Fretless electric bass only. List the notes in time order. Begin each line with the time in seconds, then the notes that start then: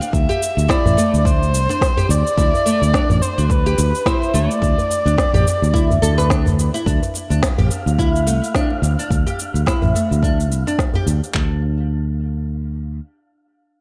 0.13 D2
0.57 D2
0.86 A1
1.14 D2
1.54 C2
2.09 D2
2.38 D2
2.82 D2
3.10 A1
3.38 D2
3.78 D2
4.34 D2
4.62 D2
5.06 D2
5.33 A1
5.62 D2
6.02 D2
6.86 D2
7.30 D2
7.58 A1
7.86 D2
8.27 C2
8.82 D2
9.10 D2
9.54 D2
9.83 A1
10.11 D2
10.51 C2
11.06 D2
11.34 D2